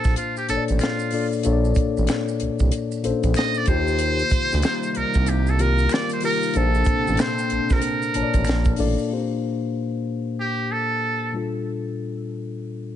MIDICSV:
0, 0, Header, 1, 6, 480
1, 0, Start_track
1, 0, Key_signature, -2, "major"
1, 0, Tempo, 638298
1, 1086, Time_signature, 4, 2, 24, 8
1, 9745, End_track
2, 0, Start_track
2, 0, Title_t, "Muted trumpet"
2, 0, Program_c, 0, 59
2, 0, Note_on_c, 0, 69, 82
2, 125, Note_off_c, 0, 69, 0
2, 130, Note_on_c, 0, 65, 68
2, 269, Note_off_c, 0, 65, 0
2, 283, Note_on_c, 0, 67, 68
2, 363, Note_off_c, 0, 67, 0
2, 371, Note_on_c, 0, 69, 84
2, 478, Note_off_c, 0, 69, 0
2, 610, Note_on_c, 0, 65, 69
2, 972, Note_off_c, 0, 65, 0
2, 2534, Note_on_c, 0, 75, 89
2, 2688, Note_on_c, 0, 74, 90
2, 2699, Note_off_c, 0, 75, 0
2, 2767, Note_off_c, 0, 74, 0
2, 2772, Note_on_c, 0, 72, 110
2, 3694, Note_off_c, 0, 72, 0
2, 3694, Note_on_c, 0, 72, 65
2, 3734, Note_on_c, 0, 70, 87
2, 3745, Note_off_c, 0, 72, 0
2, 3978, Note_on_c, 0, 67, 79
2, 3990, Note_off_c, 0, 70, 0
2, 4132, Note_on_c, 0, 69, 78
2, 4144, Note_off_c, 0, 67, 0
2, 4219, Note_on_c, 0, 70, 89
2, 4230, Note_off_c, 0, 69, 0
2, 4459, Note_on_c, 0, 74, 93
2, 4470, Note_off_c, 0, 70, 0
2, 4604, Note_off_c, 0, 74, 0
2, 4612, Note_on_c, 0, 72, 77
2, 4687, Note_off_c, 0, 72, 0
2, 4698, Note_on_c, 0, 70, 92
2, 4937, Note_on_c, 0, 69, 85
2, 4948, Note_off_c, 0, 70, 0
2, 5418, Note_on_c, 0, 72, 87
2, 5430, Note_off_c, 0, 69, 0
2, 5809, Note_on_c, 0, 70, 74
2, 5820, Note_off_c, 0, 72, 0
2, 6612, Note_off_c, 0, 70, 0
2, 7820, Note_on_c, 0, 67, 79
2, 8058, Note_on_c, 0, 69, 90
2, 8069, Note_off_c, 0, 67, 0
2, 8532, Note_off_c, 0, 69, 0
2, 9745, End_track
3, 0, Start_track
3, 0, Title_t, "Tine electric piano"
3, 0, Program_c, 1, 4
3, 0, Control_c, 1, 64, 127
3, 0, Note_on_c, 1, 46, 71
3, 0, Note_on_c, 1, 58, 56
3, 0, Note_on_c, 1, 62, 65
3, 0, Note_on_c, 1, 72, 82
3, 0, Note_on_c, 1, 81, 61
3, 76, Note_off_c, 1, 62, 0
3, 78, Note_off_c, 1, 81, 0
3, 81, Note_off_c, 1, 72, 0
3, 362, Note_off_c, 1, 46, 0
3, 362, Note_on_c, 1, 46, 66
3, 366, Note_off_c, 1, 58, 0
3, 366, Note_on_c, 1, 58, 55
3, 371, Note_on_c, 1, 62, 57
3, 377, Note_on_c, 1, 69, 63
3, 381, Note_on_c, 1, 73, 56
3, 429, Note_on_c, 1, 74, 66
3, 435, Note_off_c, 1, 73, 0
3, 818, Note_off_c, 1, 46, 0
3, 820, Note_off_c, 1, 58, 0
3, 822, Note_off_c, 1, 62, 0
3, 825, Note_off_c, 1, 69, 0
3, 844, Note_on_c, 1, 46, 64
3, 848, Note_on_c, 1, 58, 58
3, 851, Note_off_c, 1, 74, 0
3, 851, Note_on_c, 1, 62, 57
3, 856, Note_on_c, 1, 69, 62
3, 861, Note_on_c, 1, 74, 72
3, 1072, Note_off_c, 1, 46, 0
3, 1074, Note_off_c, 1, 58, 0
3, 1076, Note_off_c, 1, 62, 0
3, 1078, Note_off_c, 1, 69, 0
3, 1080, Note_off_c, 1, 74, 0
3, 1082, Note_on_c, 1, 46, 83
3, 1086, Note_on_c, 1, 58, 72
3, 1091, Note_on_c, 1, 62, 73
3, 1095, Note_on_c, 1, 69, 78
3, 1099, Note_on_c, 1, 73, 75
3, 1149, Note_on_c, 1, 74, 88
3, 1154, Note_off_c, 1, 73, 0
3, 1992, Note_off_c, 1, 46, 0
3, 1994, Note_off_c, 1, 58, 0
3, 1997, Note_off_c, 1, 62, 0
3, 1999, Note_off_c, 1, 69, 0
3, 2025, Note_off_c, 1, 74, 0
3, 2280, Note_on_c, 1, 46, 74
3, 2284, Note_on_c, 1, 58, 71
3, 2288, Note_on_c, 1, 61, 57
3, 2293, Note_on_c, 1, 69, 72
3, 2296, Note_on_c, 1, 72, 85
3, 2337, Note_on_c, 1, 62, 64
3, 2349, Note_off_c, 1, 61, 0
3, 2737, Note_off_c, 1, 46, 0
3, 2739, Note_off_c, 1, 58, 0
3, 2744, Note_off_c, 1, 69, 0
3, 2745, Note_off_c, 1, 72, 0
3, 2760, Note_on_c, 1, 51, 72
3, 2764, Note_on_c, 1, 58, 59
3, 2765, Note_off_c, 1, 62, 0
3, 2770, Note_on_c, 1, 65, 65
3, 2774, Note_on_c, 1, 67, 71
3, 2775, Control_c, 1, 64, 0
3, 2778, Note_on_c, 1, 72, 75
3, 2894, Control_c, 1, 64, 127
3, 3671, Note_off_c, 1, 51, 0
3, 3673, Note_off_c, 1, 58, 0
3, 3676, Note_off_c, 1, 65, 0
3, 3678, Note_off_c, 1, 67, 0
3, 3680, Note_off_c, 1, 72, 0
3, 4203, Note_on_c, 1, 51, 70
3, 4207, Note_on_c, 1, 58, 55
3, 4211, Note_on_c, 1, 65, 55
3, 4216, Note_on_c, 1, 67, 61
3, 4219, Note_on_c, 1, 70, 69
3, 4659, Note_off_c, 1, 51, 0
3, 4660, Note_off_c, 1, 58, 0
3, 4662, Note_off_c, 1, 65, 0
3, 4665, Note_off_c, 1, 67, 0
3, 4666, Note_off_c, 1, 70, 0
3, 4679, Note_on_c, 1, 51, 66
3, 4685, Note_on_c, 1, 58, 66
3, 4688, Note_on_c, 1, 65, 59
3, 4693, Note_on_c, 1, 67, 60
3, 4697, Note_on_c, 1, 70, 82
3, 4909, Note_off_c, 1, 51, 0
3, 4912, Note_off_c, 1, 58, 0
3, 4914, Note_off_c, 1, 65, 0
3, 4916, Note_off_c, 1, 67, 0
3, 4918, Note_off_c, 1, 70, 0
3, 4921, Note_on_c, 1, 46, 71
3, 4926, Note_on_c, 1, 58, 65
3, 4932, Note_on_c, 1, 62, 61
3, 4935, Control_c, 1, 64, 0
3, 4936, Note_on_c, 1, 69, 63
3, 4940, Note_on_c, 1, 72, 81
3, 5058, Control_c, 1, 64, 127
3, 5832, Note_off_c, 1, 46, 0
3, 5834, Note_off_c, 1, 58, 0
3, 5837, Note_off_c, 1, 62, 0
3, 5839, Note_off_c, 1, 69, 0
3, 5841, Note_off_c, 1, 72, 0
3, 6121, Note_on_c, 1, 46, 72
3, 6127, Note_on_c, 1, 58, 58
3, 6130, Note_on_c, 1, 62, 60
3, 6135, Note_on_c, 1, 81, 61
3, 6140, Note_on_c, 1, 73, 55
3, 6188, Note_on_c, 1, 74, 76
3, 6194, Note_off_c, 1, 73, 0
3, 6578, Note_off_c, 1, 46, 0
3, 6580, Note_off_c, 1, 58, 0
3, 6582, Note_off_c, 1, 62, 0
3, 6584, Note_off_c, 1, 81, 0
3, 6600, Note_on_c, 1, 46, 72
3, 6604, Note_on_c, 1, 58, 76
3, 6609, Note_off_c, 1, 74, 0
3, 6609, Note_on_c, 1, 62, 76
3, 6613, Note_on_c, 1, 69, 73
3, 6618, Note_on_c, 1, 74, 97
3, 6825, Note_off_c, 1, 46, 0
3, 6832, Note_off_c, 1, 58, 0
3, 6834, Note_on_c, 1, 46, 62
3, 6835, Note_off_c, 1, 62, 0
3, 6836, Note_off_c, 1, 69, 0
3, 6839, Note_off_c, 1, 74, 0
3, 6843, Note_on_c, 1, 58, 60
3, 6851, Note_on_c, 1, 60, 42
3, 6856, Control_c, 1, 64, 0
3, 6860, Note_on_c, 1, 67, 57
3, 6869, Note_on_c, 1, 72, 68
3, 6899, Note_on_c, 1, 62, 57
3, 6910, Note_off_c, 1, 60, 0
3, 7008, Control_c, 1, 64, 127
3, 8490, Note_off_c, 1, 46, 0
3, 8494, Note_off_c, 1, 58, 0
3, 8503, Note_off_c, 1, 67, 0
3, 8507, Note_off_c, 1, 72, 0
3, 8513, Note_on_c, 1, 46, 52
3, 8522, Note_off_c, 1, 62, 0
3, 8524, Note_on_c, 1, 55, 49
3, 8531, Note_on_c, 1, 62, 43
3, 8536, Control_c, 1, 64, 0
3, 8540, Note_on_c, 1, 65, 46
3, 8549, Note_on_c, 1, 69, 51
3, 8666, Control_c, 1, 64, 127
3, 9745, Note_off_c, 1, 46, 0
3, 9745, Note_off_c, 1, 55, 0
3, 9745, Note_off_c, 1, 62, 0
3, 9745, Note_off_c, 1, 65, 0
3, 9745, Note_off_c, 1, 69, 0
3, 9745, End_track
4, 0, Start_track
4, 0, Title_t, "Analog synth pad"
4, 0, Program_c, 2, 89
4, 3003, Note_on_c, 2, 48, 82
4, 3004, Note_on_c, 2, 55, 75
4, 3004, Note_on_c, 2, 63, 87
4, 3005, Note_on_c, 2, 58, 72
4, 4905, Note_off_c, 2, 48, 0
4, 4905, Note_off_c, 2, 63, 0
4, 4906, Note_off_c, 2, 55, 0
4, 4918, Note_on_c, 2, 48, 78
4, 4918, Note_on_c, 2, 62, 87
4, 4920, Note_on_c, 2, 60, 78
4, 6815, Note_off_c, 2, 58, 0
4, 6822, Note_off_c, 2, 48, 0
4, 6823, Note_off_c, 2, 62, 0
4, 6824, Note_off_c, 2, 60, 0
4, 9745, End_track
5, 0, Start_track
5, 0, Title_t, "Analog synth bass"
5, 0, Program_c, 3, 38
5, 43, Note_on_c, 3, 34, 78
5, 117, Note_off_c, 3, 34, 0
5, 374, Note_on_c, 3, 33, 51
5, 433, Note_off_c, 3, 33, 0
5, 527, Note_on_c, 3, 33, 95
5, 599, Note_off_c, 3, 33, 0
5, 1098, Note_on_c, 3, 34, 99
5, 1300, Note_off_c, 3, 34, 0
5, 1489, Note_on_c, 3, 33, 103
5, 1560, Note_off_c, 3, 33, 0
5, 1816, Note_on_c, 3, 36, 44
5, 1874, Note_off_c, 3, 36, 0
5, 1964, Note_on_c, 3, 36, 90
5, 2037, Note_off_c, 3, 36, 0
5, 2297, Note_on_c, 3, 34, 52
5, 2354, Note_off_c, 3, 34, 0
5, 2440, Note_on_c, 3, 34, 89
5, 2515, Note_off_c, 3, 34, 0
5, 2770, Note_on_c, 3, 39, 97
5, 3183, Note_off_c, 3, 39, 0
5, 3409, Note_on_c, 3, 38, 96
5, 3480, Note_off_c, 3, 38, 0
5, 3735, Note_on_c, 3, 36, 44
5, 3793, Note_off_c, 3, 36, 0
5, 3880, Note_on_c, 3, 36, 84
5, 4419, Note_off_c, 3, 36, 0
5, 4932, Note_on_c, 3, 34, 106
5, 5136, Note_off_c, 3, 34, 0
5, 5323, Note_on_c, 3, 33, 91
5, 5397, Note_off_c, 3, 33, 0
5, 5653, Note_on_c, 3, 34, 43
5, 5712, Note_off_c, 3, 34, 0
5, 5799, Note_on_c, 3, 34, 82
5, 5875, Note_off_c, 3, 34, 0
5, 6134, Note_on_c, 3, 33, 46
5, 6192, Note_off_c, 3, 33, 0
5, 6278, Note_on_c, 3, 33, 84
5, 6354, Note_off_c, 3, 33, 0
5, 6375, Note_on_c, 3, 34, 90
5, 6578, Note_off_c, 3, 34, 0
5, 6614, Note_on_c, 3, 33, 88
5, 6741, Note_off_c, 3, 33, 0
5, 9745, End_track
6, 0, Start_track
6, 0, Title_t, "Drums"
6, 31, Note_on_c, 9, 82, 47
6, 38, Note_on_c, 9, 36, 88
6, 44, Note_on_c, 9, 38, 28
6, 106, Note_off_c, 9, 82, 0
6, 113, Note_off_c, 9, 36, 0
6, 119, Note_off_c, 9, 38, 0
6, 122, Note_on_c, 9, 42, 73
6, 128, Note_on_c, 9, 82, 66
6, 197, Note_off_c, 9, 42, 0
6, 203, Note_off_c, 9, 82, 0
6, 276, Note_on_c, 9, 82, 39
6, 351, Note_off_c, 9, 82, 0
6, 365, Note_on_c, 9, 42, 66
6, 369, Note_on_c, 9, 82, 52
6, 440, Note_off_c, 9, 42, 0
6, 444, Note_off_c, 9, 82, 0
6, 512, Note_on_c, 9, 42, 47
6, 515, Note_on_c, 9, 82, 39
6, 587, Note_off_c, 9, 42, 0
6, 590, Note_off_c, 9, 82, 0
6, 595, Note_on_c, 9, 26, 56
6, 595, Note_on_c, 9, 82, 52
6, 609, Note_on_c, 9, 42, 67
6, 628, Note_on_c, 9, 38, 89
6, 671, Note_off_c, 9, 26, 0
6, 671, Note_off_c, 9, 82, 0
6, 684, Note_off_c, 9, 42, 0
6, 703, Note_off_c, 9, 38, 0
6, 745, Note_on_c, 9, 82, 39
6, 821, Note_off_c, 9, 82, 0
6, 831, Note_on_c, 9, 46, 49
6, 845, Note_on_c, 9, 82, 37
6, 906, Note_off_c, 9, 46, 0
6, 920, Note_off_c, 9, 82, 0
6, 997, Note_on_c, 9, 82, 45
6, 1073, Note_off_c, 9, 82, 0
6, 1078, Note_on_c, 9, 42, 73
6, 1085, Note_on_c, 9, 82, 69
6, 1153, Note_off_c, 9, 42, 0
6, 1160, Note_off_c, 9, 82, 0
6, 1237, Note_on_c, 9, 82, 37
6, 1312, Note_off_c, 9, 82, 0
6, 1313, Note_on_c, 9, 82, 49
6, 1325, Note_on_c, 9, 36, 92
6, 1328, Note_on_c, 9, 42, 65
6, 1388, Note_off_c, 9, 82, 0
6, 1400, Note_off_c, 9, 36, 0
6, 1404, Note_off_c, 9, 42, 0
6, 1482, Note_on_c, 9, 82, 50
6, 1557, Note_off_c, 9, 82, 0
6, 1557, Note_on_c, 9, 42, 73
6, 1569, Note_on_c, 9, 26, 63
6, 1569, Note_on_c, 9, 82, 58
6, 1577, Note_on_c, 9, 38, 96
6, 1632, Note_off_c, 9, 42, 0
6, 1644, Note_off_c, 9, 26, 0
6, 1644, Note_off_c, 9, 82, 0
6, 1652, Note_off_c, 9, 38, 0
6, 1716, Note_on_c, 9, 82, 46
6, 1791, Note_off_c, 9, 82, 0
6, 1802, Note_on_c, 9, 42, 59
6, 1878, Note_off_c, 9, 42, 0
6, 1948, Note_on_c, 9, 82, 42
6, 1957, Note_on_c, 9, 36, 81
6, 2023, Note_off_c, 9, 82, 0
6, 2033, Note_off_c, 9, 36, 0
6, 2042, Note_on_c, 9, 42, 83
6, 2046, Note_on_c, 9, 82, 72
6, 2117, Note_off_c, 9, 42, 0
6, 2121, Note_off_c, 9, 82, 0
6, 2192, Note_on_c, 9, 82, 40
6, 2267, Note_off_c, 9, 82, 0
6, 2286, Note_on_c, 9, 42, 71
6, 2287, Note_on_c, 9, 82, 53
6, 2361, Note_off_c, 9, 42, 0
6, 2362, Note_off_c, 9, 82, 0
6, 2431, Note_on_c, 9, 42, 45
6, 2431, Note_on_c, 9, 82, 38
6, 2435, Note_on_c, 9, 36, 80
6, 2506, Note_off_c, 9, 82, 0
6, 2507, Note_off_c, 9, 42, 0
6, 2510, Note_off_c, 9, 36, 0
6, 2513, Note_on_c, 9, 26, 55
6, 2513, Note_on_c, 9, 82, 59
6, 2529, Note_on_c, 9, 42, 67
6, 2547, Note_on_c, 9, 38, 94
6, 2589, Note_off_c, 9, 26, 0
6, 2589, Note_off_c, 9, 82, 0
6, 2604, Note_off_c, 9, 42, 0
6, 2622, Note_off_c, 9, 38, 0
6, 2664, Note_on_c, 9, 82, 43
6, 2739, Note_off_c, 9, 82, 0
6, 2750, Note_on_c, 9, 42, 73
6, 2761, Note_on_c, 9, 82, 39
6, 2764, Note_on_c, 9, 36, 102
6, 2825, Note_off_c, 9, 42, 0
6, 2836, Note_off_c, 9, 82, 0
6, 2839, Note_off_c, 9, 36, 0
6, 2912, Note_on_c, 9, 82, 46
6, 2987, Note_off_c, 9, 82, 0
6, 2996, Note_on_c, 9, 42, 78
6, 3001, Note_on_c, 9, 82, 74
6, 3071, Note_off_c, 9, 42, 0
6, 3076, Note_off_c, 9, 82, 0
6, 3151, Note_on_c, 9, 82, 35
6, 3226, Note_off_c, 9, 82, 0
6, 3230, Note_on_c, 9, 82, 48
6, 3244, Note_on_c, 9, 36, 99
6, 3247, Note_on_c, 9, 42, 64
6, 3305, Note_off_c, 9, 82, 0
6, 3319, Note_off_c, 9, 36, 0
6, 3322, Note_off_c, 9, 42, 0
6, 3398, Note_on_c, 9, 82, 55
6, 3403, Note_on_c, 9, 38, 31
6, 3473, Note_off_c, 9, 82, 0
6, 3476, Note_on_c, 9, 42, 81
6, 3478, Note_off_c, 9, 38, 0
6, 3485, Note_on_c, 9, 26, 62
6, 3485, Note_on_c, 9, 82, 60
6, 3496, Note_on_c, 9, 38, 96
6, 3552, Note_off_c, 9, 42, 0
6, 3560, Note_off_c, 9, 26, 0
6, 3560, Note_off_c, 9, 82, 0
6, 3572, Note_off_c, 9, 38, 0
6, 3631, Note_on_c, 9, 82, 51
6, 3707, Note_off_c, 9, 82, 0
6, 3720, Note_on_c, 9, 42, 58
6, 3795, Note_off_c, 9, 42, 0
6, 3865, Note_on_c, 9, 82, 45
6, 3876, Note_on_c, 9, 36, 81
6, 3940, Note_off_c, 9, 82, 0
6, 3951, Note_off_c, 9, 36, 0
6, 3958, Note_on_c, 9, 42, 71
6, 3964, Note_on_c, 9, 82, 69
6, 4033, Note_off_c, 9, 42, 0
6, 4039, Note_off_c, 9, 82, 0
6, 4111, Note_on_c, 9, 82, 39
6, 4186, Note_off_c, 9, 82, 0
6, 4204, Note_on_c, 9, 42, 70
6, 4205, Note_on_c, 9, 82, 47
6, 4279, Note_off_c, 9, 42, 0
6, 4280, Note_off_c, 9, 82, 0
6, 4350, Note_on_c, 9, 82, 40
6, 4425, Note_off_c, 9, 82, 0
6, 4432, Note_on_c, 9, 26, 58
6, 4432, Note_on_c, 9, 82, 57
6, 4447, Note_on_c, 9, 42, 68
6, 4466, Note_on_c, 9, 38, 99
6, 4508, Note_off_c, 9, 26, 0
6, 4508, Note_off_c, 9, 82, 0
6, 4523, Note_off_c, 9, 42, 0
6, 4541, Note_off_c, 9, 38, 0
6, 4582, Note_on_c, 9, 82, 40
6, 4596, Note_on_c, 9, 42, 43
6, 4657, Note_off_c, 9, 82, 0
6, 4666, Note_on_c, 9, 46, 57
6, 4671, Note_off_c, 9, 42, 0
6, 4683, Note_on_c, 9, 82, 35
6, 4741, Note_off_c, 9, 46, 0
6, 4758, Note_off_c, 9, 82, 0
6, 4835, Note_on_c, 9, 82, 43
6, 4910, Note_off_c, 9, 82, 0
6, 4915, Note_on_c, 9, 42, 75
6, 4922, Note_on_c, 9, 82, 69
6, 4990, Note_off_c, 9, 42, 0
6, 4998, Note_off_c, 9, 82, 0
6, 5071, Note_on_c, 9, 82, 38
6, 5146, Note_off_c, 9, 82, 0
6, 5148, Note_on_c, 9, 82, 45
6, 5162, Note_on_c, 9, 36, 99
6, 5165, Note_on_c, 9, 42, 65
6, 5223, Note_off_c, 9, 82, 0
6, 5237, Note_off_c, 9, 36, 0
6, 5240, Note_off_c, 9, 42, 0
6, 5319, Note_on_c, 9, 82, 51
6, 5393, Note_on_c, 9, 42, 79
6, 5395, Note_off_c, 9, 82, 0
6, 5408, Note_on_c, 9, 26, 59
6, 5408, Note_on_c, 9, 82, 56
6, 5413, Note_on_c, 9, 38, 107
6, 5469, Note_off_c, 9, 42, 0
6, 5483, Note_off_c, 9, 26, 0
6, 5483, Note_off_c, 9, 82, 0
6, 5489, Note_off_c, 9, 38, 0
6, 5554, Note_on_c, 9, 82, 52
6, 5629, Note_off_c, 9, 82, 0
6, 5639, Note_on_c, 9, 42, 51
6, 5714, Note_off_c, 9, 42, 0
6, 5787, Note_on_c, 9, 82, 48
6, 5794, Note_on_c, 9, 36, 80
6, 5800, Note_on_c, 9, 38, 31
6, 5862, Note_off_c, 9, 82, 0
6, 5869, Note_off_c, 9, 36, 0
6, 5875, Note_off_c, 9, 38, 0
6, 5877, Note_on_c, 9, 42, 77
6, 5881, Note_on_c, 9, 82, 70
6, 5952, Note_off_c, 9, 42, 0
6, 5957, Note_off_c, 9, 82, 0
6, 6032, Note_on_c, 9, 82, 39
6, 6107, Note_off_c, 9, 82, 0
6, 6122, Note_on_c, 9, 42, 71
6, 6125, Note_on_c, 9, 82, 54
6, 6197, Note_off_c, 9, 42, 0
6, 6200, Note_off_c, 9, 82, 0
6, 6269, Note_on_c, 9, 42, 44
6, 6270, Note_on_c, 9, 82, 42
6, 6272, Note_on_c, 9, 36, 73
6, 6344, Note_off_c, 9, 42, 0
6, 6346, Note_off_c, 9, 82, 0
6, 6348, Note_off_c, 9, 36, 0
6, 6352, Note_on_c, 9, 26, 59
6, 6352, Note_on_c, 9, 82, 57
6, 6369, Note_on_c, 9, 42, 63
6, 6387, Note_on_c, 9, 38, 90
6, 6427, Note_off_c, 9, 26, 0
6, 6427, Note_off_c, 9, 82, 0
6, 6444, Note_off_c, 9, 42, 0
6, 6463, Note_off_c, 9, 38, 0
6, 6500, Note_on_c, 9, 82, 44
6, 6510, Note_on_c, 9, 36, 94
6, 6575, Note_off_c, 9, 82, 0
6, 6585, Note_off_c, 9, 36, 0
6, 6590, Note_on_c, 9, 46, 58
6, 6600, Note_on_c, 9, 82, 37
6, 6665, Note_off_c, 9, 46, 0
6, 6675, Note_off_c, 9, 82, 0
6, 6753, Note_on_c, 9, 82, 48
6, 6828, Note_off_c, 9, 82, 0
6, 9745, End_track
0, 0, End_of_file